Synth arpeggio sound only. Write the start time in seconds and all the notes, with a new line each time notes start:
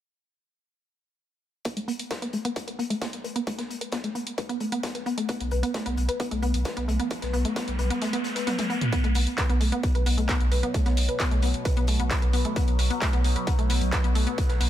1.65 B3
1.77 A3
1.88 B3
2.11 B4
2.22 B3
2.33 A3
2.45 B3
2.68 B4
2.79 B3
2.90 A3
3.01 B3
3.24 B4
3.36 B3
3.47 A3
3.58 B3
3.81 B4
3.92 B3
4.04 A3
4.15 B3
4.38 B4
4.49 B3
4.61 A3
4.72 B3
4.95 B4
5.06 B3
5.18 A3
5.29 B3
5.52 B4
5.63 B3
5.74 A3
5.86 B3
6.09 B4
6.20 B3
6.31 A3
6.42 B3
6.65 B4
6.77 B3
6.88 A3
7.00 B3
7.22 B4
7.33 B3
7.45 A3
7.56 B3
7.79 B4
7.90 B3
8.02 A3
8.13 B3
8.36 B4
8.47 B3
8.59 A3
8.70 B3
8.92 B3
9.04 A3
9.15 B3
9.38 B4
9.50 B3
9.61 A3
9.72 B3
9.95 B4
10.06 B3
10.18 A3
10.29 B3
10.52 B4
10.63 B3
10.74 A3
10.86 B3
11.09 B4
11.20 B3
11.31 A3
11.42 B3
11.65 B4
11.77 B3
11.88 A3
12.00 B3
12.22 B4
12.33 B3
12.45 A3
12.56 B3
12.79 B4
12.90 B3
13.02 A3
13.13 B3
13.36 B4
13.47 B3
13.59 A3
13.70 B3
13.92 B4
14.04 B3
14.15 A3
14.27 B3
14.49 B4
14.61 B3